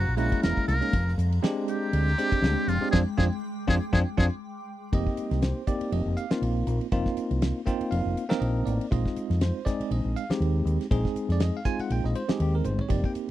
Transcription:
Already playing: ambient pad G#3 A#5, muted trumpet F#4
0.07 fingered electric bass A#1
0.17 tine electric piano G#3 A#3 C#4 E4, muted trumpet F#4, hi-hat pedal, ride
0.32 kick, ride
0.42 fingered electric bass E1, muted trumpet A#4, snare, ride
0.57 muted fingered electric bass stroke, kick
0.68 fingered electric bass C2, muted trumpet A#4, snare, hi-hat pedal, ride
0.81 tine electric piano G#3 A#3 C#4 D#4, muted fingered electric bass stroke, ride
0.93 fingered electric bass F1, ambient pad G5 D6, kick, ride
1.08 snare
1.18 fingered electric bass F2, hi-hat pedal, ride
1.32 ride
1.43 tine electric piano G#3 C4 D4 G4, snare, ride
1.68 muted trumpet G4, hi-hat pedal, ride
1.93 fingered electric bass D2, ride
2.08 snare
2.18 tine electric piano G#3 C4 D4 G4, hi-hat pedal, ride
2.32 muted fingered electric bass stroke, kick, ride
2.42 fingered electric bass D2, snare, ride
2.56 muted fingered electric bass stroke
2.67 fingered electric bass F1, muted trumpet F4, snare, hi-hat pedal, ride
2.81 tine electric piano G#3 C4 D4 G4, muted fingered electric bass stroke, snare
2.91 fingered electric bass F2, tine electric piano C4 D4 F4, muted trumpet G#4, kick, snare
3.17 fingered electric bass F2, tine electric piano C4 D4 F4, muted trumpet G#4, kick, snare
3.67 fingered electric bass F2, tine electric piano C4 D4 F4, muted trumpet G#4, kick, snare
3.93 fingered electric bass F2, tine electric piano C4 D4 F4, muted trumpet G#4, kick, snare
4.17 fingered electric bass F2, tine electric piano C4 D4 F4, muted trumpet G#4, kick, snare
4.92 fingered electric bass F1, tine electric piano A#3 C4 D#4 G4 D#5, kick, ride
5.07 kick
5.17 muted fingered electric bass stroke, hi-hat pedal, ride
5.31 fingered electric bass C2, snare, ride
5.42 tine electric piano C5, snare, ride
5.67 tine electric piano A#3 C4 D#4 G4 D5, kick, hi-hat pedal, ride
5.81 muted fingered electric bass stroke, ride
5.92 fingered electric bass F1, tine electric piano D#5, ride
6.05 fingered electric bass F1
6.17 tine electric piano F5, hi-hat pedal, ride
6.30 tine electric piano A#3 C4 D#4 F4, muted fingered electric bass stroke, snare, ride
6.42 fingered electric bass A#1, ride
6.67 fingered electric bass A#1, hi-hat pedal, ride
6.81 ride
6.92 fingered electric bass F1, tine electric piano A#3 C4 D#4 F4, kick, ride
7.06 kick, snare
7.17 muted fingered electric bass stroke, hi-hat pedal, ride
7.31 fingered electric bass C2, ride
7.42 snare, ride
7.66 tine electric piano A#3 C4 D#4 F4 G5, kick, snare, hi-hat pedal, ride
7.80 muted fingered electric bass stroke, ride
7.91 fingered electric bass F1, tine electric piano F5, ride
8.05 fingered electric bass F1
8.17 hi-hat pedal, ride
8.29 tine electric piano A#3 C4 D#4 A#4, muted fingered electric bass stroke, snare, ride
8.40 fingered electric bass A#1, tine electric piano D#5, ride
8.66 fingered electric bass A1, tine electric piano D5, hi-hat pedal, ride
8.81 ride
8.91 fingered electric bass A#1, tine electric piano G#3 C4 D#4 F4 D#5, kick, ride
9.06 kick, snare
9.16 muted fingered electric bass stroke, hi-hat pedal, ride
9.30 fingered electric bass F2, snare, ride
9.41 tine electric piano C5, snare, ride
9.65 tine electric piano G#3 C4 D#4 G#4 D5, kick, snare, hi-hat pedal, ride
9.80 muted fingered electric bass stroke, ride
9.91 fingered electric bass A#1, tine electric piano D#5, ride
10.04 fingered electric bass A#1
10.16 tine electric piano F5, hi-hat pedal, ride
10.29 tine electric piano G#3 C4 D#4 G4, muted fingered electric bass stroke, snare, ride
10.40 fingered electric bass D#2, ride
10.65 fingered electric bass D#2, hi-hat pedal, ride
10.81 snare, ride
10.91 fingered electric bass A#1, tine electric piano G#3 C4 D#4 G#4, kick, ride
11.05 kick, snare
11.15 muted fingered electric bass stroke, hi-hat pedal, ride
11.29 fingered electric bass F2, tine electric piano D5, snare, ride
11.40 tine electric piano D#5, snare, ride
11.57 tine electric piano F5
11.65 tine electric piano G#3 C4 D#4 F4 G#5, kick, snare, hi-hat pedal, ride
11.79 tine electric piano F#5, muted fingered electric bass stroke, ride
11.90 fingered electric bass A#1, tine electric piano G5, ride
12.04 fingered electric bass A#1, tine electric piano D#5, snare
12.15 tine electric piano C5, hi-hat pedal, ride
12.28 tine electric piano G#3 C4 D#4 G4 G#4, muted fingered electric bass stroke, snare, ride
12.40 fingered electric bass D#2, tine electric piano G4, ride
12.55 tine electric piano A#4
12.65 fingered electric bass G1, tine electric piano C5, hi-hat pedal, high tom
12.79 tine electric piano C#5, floor tom
12.89 fingered electric bass F1, tine electric piano A#3 C4 D#4 G4 D5, kick, ride
13.04 tine electric piano G5, kick
13.15 muted fingered electric bass stroke, hi-hat pedal, ride

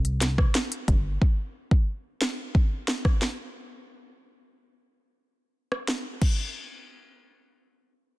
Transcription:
Already playing: analog synth bass C2
0.05 closed hi-hat
0.21 snare, closed hi-hat
0.38 kick, cross-stick
0.55 snare, closed hi-hat
0.72 closed hi-hat
0.88 analog synth bass G1, kick, closed hi-hat
1.22 kick
1.71 kick
2.21 snare
2.55 kick
2.88 snare
3.05 kick, cross-stick
3.22 snare
5.72 cross-stick
5.88 snare
6.22 kick, crash

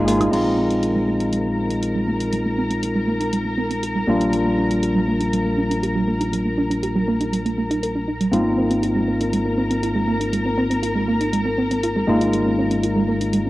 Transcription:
Already playing: fingered electric bass G#1, string section G#4 G#5
0.07 tine electric piano G#3 A#3 D#4 F4, synth arpeggio sound A#3, open hi-hat, cabasa
0.20 synth arpeggio sound D#4, closed hi-hat, high conga, cabasa, high woodblock
0.31 fingered electric bass A#1, tine electric piano G#3 C4 D#4 F4, synth arpeggio sound G#3, string section A#4 A#5, closed hi-hat, crash
0.45 synth arpeggio sound A#3
0.58 synth arpeggio sound C4
0.70 synth arpeggio sound C4, closed hi-hat
0.83 synth arpeggio sound F4, closed hi-hat
0.96 synth arpeggio sound G#3
1.08 synth arpeggio sound A#3
1.20 synth arpeggio sound D#4, closed hi-hat
1.33 synth arpeggio sound G#3, closed hi-hat
1.45 synth arpeggio sound A#3
1.58 synth arpeggio sound C4
1.71 synth arpeggio sound C4, closed hi-hat
1.83 synth arpeggio sound F4, closed hi-hat
1.95 synth arpeggio sound G#3
2.08 synth arpeggio sound A#3
2.20 synth arpeggio sound D#4, closed hi-hat
2.33 synth arpeggio sound G#3, closed hi-hat
2.46 synth arpeggio sound A#3
2.58 synth arpeggio sound C4
2.70 synth arpeggio sound C4, closed hi-hat
2.83 synth arpeggio sound F4, closed hi-hat
2.95 synth arpeggio sound G#3
3.07 synth arpeggio sound A#3
3.20 synth arpeggio sound D#4, closed hi-hat
3.33 synth arpeggio sound G#3, closed hi-hat
3.45 synth arpeggio sound A#3
3.58 synth arpeggio sound C4
3.70 synth arpeggio sound C4, closed hi-hat
3.83 synth arpeggio sound F4, closed hi-hat
3.95 synth arpeggio sound G#3
4.07 fingered electric bass A#1, tine electric piano G3 A#3 D4 F4, synth arpeggio sound A#3
4.20 synth arpeggio sound D#4, closed hi-hat
4.33 synth arpeggio sound G3, closed hi-hat
4.45 synth arpeggio sound A#3
4.58 synth arpeggio sound D4
4.70 synth arpeggio sound D4, closed hi-hat
4.83 synth arpeggio sound G4, closed hi-hat
4.95 synth arpeggio sound G3
5.07 synth arpeggio sound A#3
5.20 synth arpeggio sound D#4, closed hi-hat
5.33 synth arpeggio sound G3, closed hi-hat
5.45 synth arpeggio sound A#3
5.58 synth arpeggio sound D4
5.70 synth arpeggio sound D4, closed hi-hat
5.83 synth arpeggio sound G4, closed hi-hat
5.95 synth arpeggio sound G3
6.07 synth arpeggio sound A#3
6.20 synth arpeggio sound D#4, closed hi-hat
6.33 synth arpeggio sound G3, closed hi-hat
6.45 synth arpeggio sound A#3
6.58 synth arpeggio sound D4
6.70 synth arpeggio sound D4, closed hi-hat
6.83 synth arpeggio sound G4, closed hi-hat
6.95 synth arpeggio sound G3
7.08 synth arpeggio sound A#3
7.21 synth arpeggio sound D#4, closed hi-hat
7.33 synth arpeggio sound G3, closed hi-hat
7.46 synth arpeggio sound A#3, closed hi-hat
7.58 synth arpeggio sound A#3
7.71 synth arpeggio sound D#4, closed hi-hat
7.83 synth arpeggio sound A#4, closed hi-hat
7.95 synth arpeggio sound D4
8.08 synth arpeggio sound D#4
8.21 synth arpeggio sound G3, closed hi-hat
8.32 fingered electric bass G#1, synth arpeggio sound G#3, tine electric piano A#3 C4 D#4 F4, string section A#4 A#5, closed hi-hat
8.46 synth arpeggio sound C4
8.58 synth arpeggio sound C4
8.71 synth arpeggio sound C4, closed hi-hat
8.83 synth arpeggio sound F4, closed hi-hat
8.96 synth arpeggio sound G#3
9.08 synth arpeggio sound A#3
9.21 synth arpeggio sound D#4, closed hi-hat
9.33 synth arpeggio sound G#3, closed hi-hat
9.46 synth arpeggio sound C4
9.58 synth arpeggio sound C4
9.71 synth arpeggio sound C4, closed hi-hat
9.83 synth arpeggio sound F4, closed hi-hat
9.95 synth arpeggio sound G#3
10.08 synth arpeggio sound A#3
10.20 synth arpeggio sound D#4, closed hi-hat
10.33 synth arpeggio sound G#3, closed hi-hat
10.46 synth arpeggio sound C4
10.58 synth arpeggio sound C4
10.70 synth arpeggio sound C4, closed hi-hat
10.83 synth arpeggio sound F4, closed hi-hat
10.95 synth arpeggio sound G#3
11.08 synth arpeggio sound A#3
11.21 synth arpeggio sound D#4, closed hi-hat
11.33 synth arpeggio sound G#3, closed hi-hat
11.45 synth arpeggio sound C4
11.58 synth arpeggio sound C4
11.71 synth arpeggio sound C4, closed hi-hat
11.83 synth arpeggio sound F4, closed hi-hat
11.96 synth arpeggio sound G#3
12.07 fingered electric bass G#1, tine electric piano G#3 A#3 D#4 F4, synth arpeggio sound A#3
12.21 synth arpeggio sound D#4, closed hi-hat
12.33 synth arpeggio sound G#3, closed hi-hat
12.46 synth arpeggio sound C#4
12.58 synth arpeggio sound C#4
12.71 synth arpeggio sound C#4, closed hi-hat
12.83 synth arpeggio sound F4, closed hi-hat
12.96 synth arpeggio sound G#3
13.08 synth arpeggio sound A#3
13.21 synth arpeggio sound D#4, closed hi-hat
13.33 synth arpeggio sound G#3, closed hi-hat
13.45 synth arpeggio sound C#4

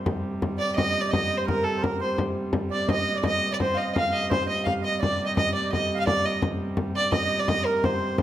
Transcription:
0.04 hurdy-gurdy C3 G3, frame drum
0.42 frame drum
0.57 melodica D5, fiddle D5, frame drum
0.75 melodica D#5, fiddle D#5, frame drum
0.96 frame drum
1.01 melodica D5, fiddle D5
1.09 melodica D#5, fiddle D#5
1.13 frame drum
1.37 melodica C5, fiddle C5
1.46 melodica A#4, fiddle A#4, frame drum
1.62 melodica A4, fiddle A4
1.66 frame drum
1.77 melodica C5
1.82 melodica A#4, fiddle A#4, frame drum
2.00 melodica C5, fiddle C5, frame drum
2.18 frame drum
2.53 frame drum
2.70 melodica D5, fiddle D5, frame drum
2.88 melodica D#5, fiddle D#5, frame drum
3.06 frame drum
3.14 melodica D5, fiddle D5
3.23 melodica D#5, frame drum
3.27 fiddle D#5
3.42 frame drum
3.51 melodica D5, fiddle D5
3.60 melodica C5, fiddle C5, frame drum
3.74 melodica D#5, fiddle D#5 F5, frame drum
3.94 melodica F5, fiddle F5, frame drum
4.09 melodica D#5 F5, fiddle D#5
4.29 hurdy-gurdy C3 G3, melodica C5, fiddle C5, frame drum
4.46 melodica D#5, fiddle D#5
4.64 melodica F5, fiddle F5, frame drum
4.81 melodica D#5, fiddle D#5
4.86 frame drum
4.98 melodica D5, fiddle D5
5.03 frame drum
5.20 melodica D#5, frame drum
5.27 fiddle D#5
5.36 melodica D#5, fiddle D#5, frame drum
5.52 melodica D5, fiddle D5
5.70 melodica D#5, fiddle D#5, frame drum
5.91 melodica F5, frame drum
6.00 fiddle F5
6.06 melodica D5, fiddle D5, frame drum
6.24 melodica D#5, fiddle D#5, frame drum
6.42 frame drum
6.77 frame drum
6.96 melodica D5, fiddle D5, frame drum
7.12 melodica D#5, fiddle D#5, frame drum
7.30 frame drum
7.39 melodica D5, fiddle D5
7.48 melodica D#5, fiddle D#5, frame drum
7.66 fiddle A#4, melodica A#4, frame drum
7.83 melodica C5, fiddle C5, frame drum
8.18 frame drum

